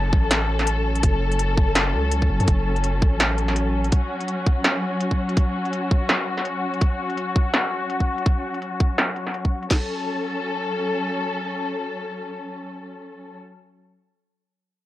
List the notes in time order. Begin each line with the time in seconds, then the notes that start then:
Already playing: F#1 F#3 C#4 A4, downlifter
0.13 A1, kick
0.31 snare, closed hi-hat
0.59 snare
0.67 closed hi-hat
0.95 closed hi-hat
1.03 F#1, kick, closed hi-hat
1.32 closed hi-hat
1.39 closed hi-hat
1.57 kick
1.75 snare, closed hi-hat
1.94 C#2
2.11 closed hi-hat
2.22 kick
2.30 F#1
2.40 F#2, closed hi-hat
2.48 F#1, kick, closed hi-hat
2.76 closed hi-hat
2.84 closed hi-hat
3.02 A1, kick
3.20 snare, closed hi-hat
3.38 closed hi-hat
3.48 snare
3.56 closed hi-hat
3.84 closed hi-hat
3.92 F#4, kick, closed hi-hat
4.20 closed hi-hat
4.28 closed hi-hat
4.46 kick
4.64 snare, closed hi-hat
5.00 closed hi-hat
5.11 kick
5.29 closed hi-hat
5.37 kick, closed hi-hat
5.65 closed hi-hat
5.73 closed hi-hat
5.91 kick
6.09 snare, closed hi-hat
6.38 snare
6.45 closed hi-hat
6.74 closed hi-hat
6.81 kick, closed hi-hat
7.10 closed hi-hat
7.17 closed hi-hat
7.36 kick
7.54 snare, closed hi-hat
7.90 closed hi-hat
8.00 kick
8.18 closed hi-hat
8.26 kick, closed hi-hat
8.54 closed hi-hat
8.62 closed hi-hat
8.80 kick
8.98 snare, closed hi-hat
9.16 closed hi-hat
9.27 snare
9.34 closed hi-hat
9.45 kick
9.63 closed hi-hat
9.71 F#3 C#4 A4, kick, snare, crash